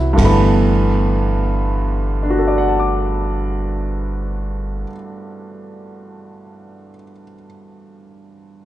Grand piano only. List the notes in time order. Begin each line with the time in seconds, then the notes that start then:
Already playing: C3 E3 F#3 B3 E4 F#4 F#5
0.13 G2 D3
0.19 E3 A3
0.25 B3 B5
2.23 D4
2.30 F#4
2.38 A4
2.47 D5
2.58 F#5
2.68 A5
2.79 D6